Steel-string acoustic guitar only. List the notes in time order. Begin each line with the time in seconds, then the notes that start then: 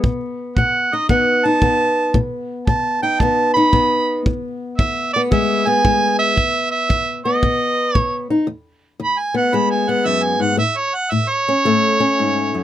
Already playing: B3
0.04 B2
0.58 B2
0.93 D#4
1.09 B2 B3
1.45 D#4
1.62 B2 B3
2.15 B2
2.68 B2
3.03 D#4
3.21 B2 B3
3.57 D#4
3.72 B2 B3
4.26 E2
4.80 E2
5.16 B3
5.31 E2 G#3
5.67 B3
5.84 E2 G#3
6.36 E2
6.89 E2
7.25 B3
7.43 B2
7.96 B2
8.30 D#4
8.47 E2
9.00 E2
9.34 B3
9.53 E2 G#3
9.89 B3
10.05 F#2
10.40 G#2
10.57 A2
11.12 A2
11.48 C#4
11.65 A2 A3
12.00 C#4
12.19 G#2
12.55 F#2